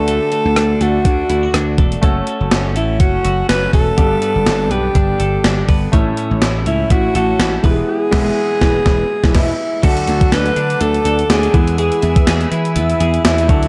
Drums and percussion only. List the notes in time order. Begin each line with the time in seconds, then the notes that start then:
0.08 closed hi-hat
0.32 closed hi-hat
0.56 cross-stick, closed hi-hat
0.81 closed hi-hat
1.05 kick, closed hi-hat
1.30 closed hi-hat
1.54 cross-stick, closed hi-hat
1.78 kick, closed hi-hat
1.92 closed hi-hat
2.03 kick, closed hi-hat
2.27 closed hi-hat
2.51 snare, closed hi-hat
2.76 closed hi-hat
3.00 kick, closed hi-hat
3.25 closed hi-hat
3.49 snare, closed hi-hat
3.73 kick, open hi-hat
3.98 kick, closed hi-hat
4.22 closed hi-hat
4.46 snare, closed hi-hat
4.71 closed hi-hat
4.95 kick, closed hi-hat
5.20 closed hi-hat
5.44 snare, closed hi-hat
5.69 kick, open hi-hat
5.93 kick, closed hi-hat
6.17 closed hi-hat
6.42 snare, closed hi-hat
6.66 closed hi-hat
6.90 kick, closed hi-hat
7.15 closed hi-hat
7.40 snare, closed hi-hat
7.64 kick, open hi-hat
8.13 kick, snare, crash
8.61 kick, snare
8.86 kick, snare
9.24 kick, snare
9.35 kick, snare, crash
9.83 kick, closed hi-hat, crash
9.97 closed hi-hat
10.07 closed hi-hat
10.21 kick, closed hi-hat
10.32 snare, closed hi-hat
10.46 closed hi-hat
10.56 closed hi-hat
10.70 closed hi-hat
10.81 closed hi-hat
10.94 closed hi-hat
11.05 closed hi-hat
11.19 closed hi-hat
11.30 snare, closed hi-hat
11.43 closed hi-hat
11.54 kick, closed hi-hat
11.68 closed hi-hat
11.78 closed hi-hat
11.92 closed hi-hat
12.02 closed hi-hat
12.16 kick, closed hi-hat
12.27 snare, closed hi-hat
12.41 closed hi-hat
12.52 closed hi-hat
12.65 closed hi-hat
12.76 closed hi-hat
12.90 closed hi-hat
13.00 closed hi-hat
13.14 closed hi-hat
13.25 snare, closed hi-hat
13.38 closed hi-hat
13.49 kick, closed hi-hat
13.63 closed hi-hat